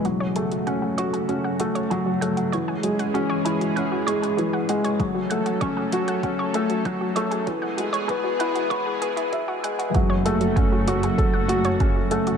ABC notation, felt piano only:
X:1
M:4/4
L:1/8
Q:1/4=97
K:F#m
V:1 name="Felt piano"
F, A, C F C A, F, A, | E, G, C E C G, E, G, | F, A, C F C A, F, A, | E, G, B, E B, B, e G, |
F, A, C F A F C A, |]